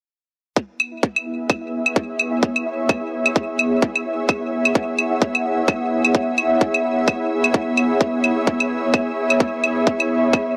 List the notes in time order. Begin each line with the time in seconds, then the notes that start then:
0.56 B3 E4 E5, kick
0.80 claves
0.90 E5
1.01 G#4, kick
1.16 claves
1.50 C#5, kick, claves
1.86 claves
1.96 kick
2.19 claves
2.43 kick
2.56 claves
2.89 kick, claves
3.26 claves
3.36 kick
3.59 claves
3.82 kick
3.95 claves
4.29 F#5, kick, claves
4.65 claves
4.75 kick
4.99 claves
5.22 kick
5.35 claves
5.68 kick, claves
6.05 claves
6.15 kick
6.38 claves
6.61 kick
6.74 claves
7.08 kick, claves
7.44 claves
7.54 kick
7.77 claves
8.01 E5, kick
8.24 claves
8.47 kick
8.60 claves
8.94 kick, claves
9.30 claves
9.40 kick
9.64 claves
9.87 kick
10.00 claves
10.33 kick, claves